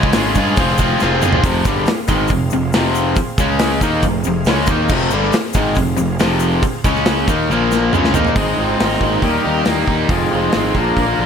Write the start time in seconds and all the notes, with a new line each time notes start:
Already playing: C#2 C#3 G#3 C#4 F4 G#4 F5
0.02 kick, shaker
0.13 G#1 C#3 G#3 C#4 F4 G#4, snare, open hi-hat, shaker
0.35 G2 C#3 G#3 C#4 F4 G#4, kick, shaker
0.56 F1 F3 C4 F4 G#4 F5, kick, open hi-hat, shaker
0.78 F3 C4 F4 G#4, kick, shaker
1.00 F1 F3 C4 F4 G#4, snare, shaker
1.22 F1 F3 C4 F4 G#4, mid tom, shaker
1.32 floor tom
1.43 F1 F2 C3 F3 C4 G#4 F5, kick, open hi-hat, shaker
1.65 G1 G2 D3 G3, kick, shaker
1.86 muted overdriven electric guitar stroke, muted picked electric bass stroke, snare, open hi-hat, shaker
2.08 G#1 G#2 D#3 G#3, kick, shaker
2.28 F1, kick, open hi-hat, shaker
2.32 F2 C3
2.50 F1 F2 C3, shaker
2.73 F1 F2 C3 F3, snare, open hi-hat, shaker
2.95 shaker
3.16 muted picked electric bass stroke, muted overdriven electric guitar stroke, kick, open hi-hat, shaker
3.38 C#2 C#3 G#3 C#4 G#4 G#5, kick, shaker
3.59 snare, open hi-hat, shaker
3.81 D#2 D#3 A#3 C4 D#4 G#4 F5, kick, shaker
4.02 F1 F2 C3, kick, open hi-hat, shaker
4.24 F1 F2 C3, shaker
4.45 C#2 C#3, snare, open hi-hat, shaker
4.50 G#3 C#4
4.66 D#2 D#3 A#3, kick, shaker
4.71 D#4
4.89 F1 F2 C3 F3, kick, crash, shaker
5.10 G1 G2 D3 G3, shaker
5.23 snare
5.32 muted picked electric bass stroke, muted overdriven electric guitar stroke, snare, open hi-hat, shaker
5.53 G#1 G#2 D#3 G#3, kick, shaker
5.75 F1 F2 C3, kick, open hi-hat, shaker
5.97 F1 F2 C3, shaker
6.19 F1 F2 C3 F3, snare, open hi-hat, shaker
6.40 shaker
6.63 muted picked electric bass stroke, muted overdriven electric guitar stroke, kick, open hi-hat, shaker
6.84 C#2 C#3 G#3 C#4 G#4 G#5, kick, shaker
6.96 snare, shaker
7.05 snare, open hi-hat, shaker
7.28 D#2 D#3 A#3 D#4, kick, shaker
7.50 A#1 A#2 F3 A#3 F4 F5, high tom, shaker
7.72 snare, shaker
7.93 C#2 C#3 G#3 C4 C#4 G#4 F5, mid tom, shaker
8.04 snare
8.14 D#2 D#3 A#3 D#4, floor tom, shaker
8.25 floor tom, shaker
8.35 G#1 G#3 C4 D#4 G#4, kick, open hi-hat
8.55 G#1 C4 E4
8.59 C4 F4
8.79 G#1 C4 D#4 F4, snare, open hi-hat
9.01 G#1 G#3 A#3 D#4, kick
9.22 D#2 D#3 G3 A#3 D#4 G4, kick, open hi-hat
9.45 D#2 D#4
9.65 D#2 A#3, snare, open hi-hat
9.88 D#2 D#4, kick
10.09 F1 F2 F3 G#3 C4 F4 G#4, kick, open hi-hat
10.31 F1 G#3 D#4 G4
10.35 G#4
10.52 G#1 C4, snare, open hi-hat
10.56 D#4 G#4
10.74 A#1 A#2 D3 F3 A#3 D4 A#4, kick
10.79 D4 F4 G#4
10.97 A#1 A#3 F4, kick, open hi-hat
11.01 A#4
11.19 A#1 D4 F4 A#4